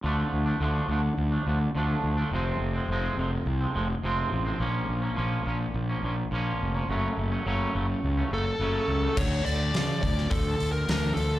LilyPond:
<<
  \new Staff \with { instrumentName = "Lead electric guitar" } { \time 4/4 \key d \minor \tempo 4 = 105 r1 | r1 | r1 | r2 r8 a'4. |
cis''8 d''4 d''8 a'8. bes'8. a'8 | }
  \new Staff \with { instrumentName = "Clean electric guitar" } { \clef bass \time 4/4 \key d \minor <d f a d'>8. <f a d'>16 <d f a d'>8 <d f a d'>8. <f a d'>16 <d f a d'>8 <d f a d'>8. <f a d'>16 | <f, c f aes c'>8. <f aes c'>16 <f, c f aes c'>8 <c f aes c'>8. <f aes c'>16 <c f aes c'>8 <f, c f aes c'>8. <f aes c'>16 | <bes, f bes des'>8. <f bes des'>16 <bes, f bes des'>8 <bes, f bes des'>8. <f bes des'>16 <bes, f bes des'>8 <bes, f bes des'>8. <f bes des'>16 | <fis, cis fis a cis'>8. <fis a cis'>16 <fis, cis fis a cis'>8 <cis fis a cis'>8. <fis a cis'>16 <cis fis a cis'>8 <fis, cis fis a cis'>8. <fis a cis'>16 |
d8 d8 f4 f4 d'8 f8 | }
  \new Staff \with { instrumentName = "Fingered electric bass" } { \clef bass \time 4/4 \key d \minor d,8 d,8 d,8 d,8 d,8 d,8 d,8 d,8 | f,,8 f,,8 f,,8 f,,8 c,8 f,,8 f,,8 a,,8 | bes,,8 bes,,8 bes,,8 bes,,8 bes,,8 bes,,8 bes,,8 f,,8 | fis,,8 fis,,8 fis,,8 fis,,8 cis,8 fis,,8 fis,,8 cis,8 |
d,8 d,8 cis8 d,8 d,8 d,8 d,8 d,8 | }
  \new DrumStaff \with { instrumentName = "Drums" } \drummode { \time 4/4 r4 r4 r4 r4 | r4 r4 r4 r4 | r4 r4 r4 r4 | r4 r4 r4 r4 |
<cymc bd>8 hho8 <hho sn>8 <hho bd>16 sn16 <hho bd>8 hho8 <hho sn>8 hho8 | }
>>